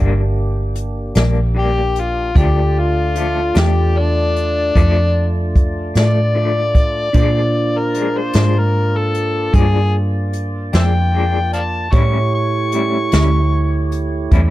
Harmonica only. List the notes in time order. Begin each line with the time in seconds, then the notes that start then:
1.59 G4
2.00 F4
2.38 G4
2.80 F4
3.59 G4
3.99 D4
5.98 D5
7.78 A#4
8.18 C5
8.59 A#4
8.97 A4
9.55 G#4
10.75 C5 E5 G5
11.54 D5 F5 A5
11.93 C#6
12.35 C#6